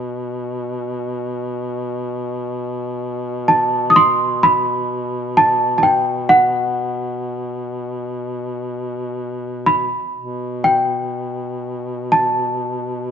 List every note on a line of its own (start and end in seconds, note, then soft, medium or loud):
0.00 10.00 B2 soft
3.48 3.89 A5 medium
3.90 3.96 D#6 medium
3.96 4.44 C6 medium
4.43 5.39 B5 medium
5.37 5.77 A5 medium
5.78 5.84 A5 medium
5.83 6.31 G5 medium
6.29 9.77 F#5 medium
9.66 10.68 B5 medium
10.17 13.11 B2 soft
10.64 12.15 G5 medium
12.12 13.11 A5 medium